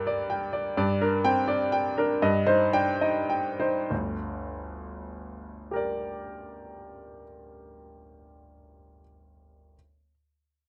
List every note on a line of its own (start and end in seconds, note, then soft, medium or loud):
0.00 0.73 G2 medium
0.00 0.20 A#4 soft
0.00 0.07 D5 medium
0.00 0.30 G5 medium
0.07 0.44 D5 medium
0.30 0.68 G5 medium
0.53 0.76 D5 soft
0.77 2.17 G2 medium
0.77 1.15 D5 medium
1.01 1.39 D4 medium
1.01 1.39 A#4 medium
1.25 1.48 C4 soft
1.25 1.62 G5 medium
1.48 1.86 D4 soft
1.48 1.86 D5 medium
1.72 2.11 G5 medium
1.98 2.22 D4 medium
1.98 2.22 A#4 medium
2.22 3.87 G2 medium
2.22 2.63 D#5 medium
2.47 2.89 D#4 medium
2.47 2.89 C5 medium
2.73 3.01 D4 soft
2.73 3.18 G5 medium
3.01 3.48 D#4 soft
3.01 3.48 D#5 medium
3.30 3.78 G5 soft
3.60 3.90 D#4 soft
3.60 3.90 C5 soft
3.90 7.23 G1 soft
3.90 7.23 D2 soft
5.71 8.99 G4 soft
5.71 9.00 A#4 soft
5.76 9.01 D5 soft